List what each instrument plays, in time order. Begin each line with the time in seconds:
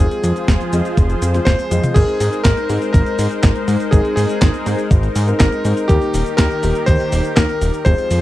Already playing: electric grand piano G#4
0.00 analog synth pad F3 F4 G#4 C5, grand piano G#3 C4 F4 C5
0.11 closed hi-hat, cabasa
0.24 analog synth bass F2, closed hi-hat, cabasa
0.36 closed hi-hat, cabasa
0.48 analog synth bass F1, kick, snare, closed hi-hat, cabasa
0.61 closed hi-hat, cabasa
0.73 analog synth bass F2, grand piano G#3 C4 F4 D#5, closed hi-hat, cabasa
0.85 closed hi-hat, cabasa
0.97 analog synth bass F1, kick, closed hi-hat, cabasa
1.10 closed hi-hat, cabasa
1.22 analog synth bass F2, closed hi-hat, cabasa
1.34 grand piano G#3 C4 F4 C5, snare, closed hi-hat, cabasa
1.45 analog synth bass F1, electric grand piano C5, kick, snare, closed hi-hat, cabasa
1.59 closed hi-hat, cabasa
1.71 analog synth bass F2, grand piano G#3 C4 F4 D#5, closed hi-hat, high tom, cabasa
1.84 closed hi-hat, mid tom, cabasa
1.94 analog synth bass G#1, grand piano G#3 C4 D#4 A#4, analog synth pad G#3 D#4 A#4 C5, electric grand piano G#4, kick, closed hi-hat, crash, cabasa
2.08 closed hi-hat, cabasa
2.20 analog synth bass G#2, open hi-hat, cabasa
2.33 closed hi-hat, cabasa
2.44 analog synth bass G#1, electric grand piano A#4, kick, snare, clap, closed hi-hat, cabasa
2.57 closed hi-hat, cabasa
2.69 analog synth bass G#2, grand piano G#3 C4 D#4 A#4, open hi-hat, cabasa
2.82 closed hi-hat, cabasa
2.93 analog synth bass G#1, electric grand piano A#4, kick, closed hi-hat, cabasa
3.06 closed hi-hat, cabasa
3.19 analog synth bass G#2, open hi-hat, cabasa
3.31 closed hi-hat, cabasa
3.43 analog synth bass G#1, kick, snare, clap, closed hi-hat, cabasa
3.56 closed hi-hat, cabasa
3.68 analog synth bass G#2, open hi-hat, cabasa
3.80 closed hi-hat, cabasa
3.91 analog synth bass G#1, grand piano G#3 C4 D#4 A#4, electric grand piano G#4, kick, closed hi-hat, cabasa
4.05 closed hi-hat, cabasa
4.16 analog synth bass G#2, electric grand piano G#4, open hi-hat, cabasa
4.29 closed hi-hat, cabasa
4.42 analog synth bass G#1, kick, snare, clap, closed hi-hat, cabasa
4.54 closed hi-hat, cabasa
4.66 analog synth bass G#2, grand piano G#3 C4 D#4 C5, open hi-hat, cabasa
4.79 closed hi-hat, cabasa
4.91 analog synth bass G#1, kick, closed hi-hat, cabasa
5.03 closed hi-hat, cabasa
5.16 analog synth bass G#2, open hi-hat, cabasa
5.28 grand piano G#3 C4 D#4 A#4, closed hi-hat, cabasa
5.39 analog synth bass G#1, electric grand piano A#4, kick, snare, clap, closed hi-hat, cabasa
5.52 closed hi-hat, cabasa
5.65 analog synth bass G#2, grand piano G#3 C4 D#4 C5, open hi-hat, cabasa
5.77 closed hi-hat, cabasa
5.88 analog synth bass D#2, analog synth pad D#3 G4, grand piano G3 A#3 D#4 A#4, electric grand piano G4, kick, closed hi-hat, cabasa
6.02 closed hi-hat, cabasa
6.14 analog synth bass D#1, open hi-hat, cabasa
6.26 closed hi-hat, cabasa
6.37 analog synth bass D#2, electric grand piano A#4, kick, snare, clap, closed hi-hat, cabasa
6.51 closed hi-hat, cabasa
6.63 analog synth bass D#1, grand piano G3 A#3 D#4 A#4, open hi-hat, cabasa
6.75 closed hi-hat, cabasa
6.86 analog synth bass D#2, electric grand piano C5, kick, closed hi-hat, cabasa
7.00 closed hi-hat, cabasa
7.12 analog synth bass D#1, open hi-hat, cabasa
7.25 closed hi-hat, cabasa
7.36 analog synth bass D#2, electric grand piano A#4, kick, snare, clap, closed hi-hat, cabasa
7.49 closed hi-hat, cabasa
7.61 analog synth bass D#1, open hi-hat, cabasa
7.74 closed hi-hat, cabasa
7.85 analog synth bass F1, analog synth pad F3 F4 G#4 C5, grand piano G#3 C4 F4 C5, electric grand piano C5, kick, closed hi-hat, cabasa
7.98 closed hi-hat, cabasa
8.11 analog synth bass F2, open hi-hat, cabasa